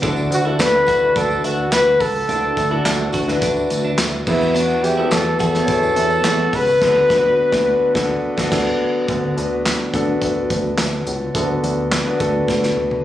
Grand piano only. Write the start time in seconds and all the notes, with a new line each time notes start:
0.02 D3 D4 E4 F#4 A4
0.45 D4 E4 F#4 A4
1.01 D4 E4 F#4 B4
2.28 D3 D4 E4 F#4 A4
2.71 D4 E4 F#4 A4
3.27 D4 E4 F#4 B4
4.27 E3 B3 E4 F#4 B4
4.98 B3 E4 F#4 A4
5.54 B3 E4 F#4 B4
5.62 C#5
6.81 D3 B3 D4 F#4 A4
7.09 B3 D4 F#4 B4
7.51 B3 D4 F#4 B4
7.94 B3 D4 F#4 A4
8.37 B3 D4 F#4 A4
8.50 B3 D4 F#4 A4
9.07 D3 B3 D4 F#4 A4
9.36 B3 D4 F#4 B4
9.93 B3 D4 F#4 A4
11.34 D3 B3 D4 F#4 A4
12.05 B3 D4 F#4 B4
12.19 B3 D4 F#4 A4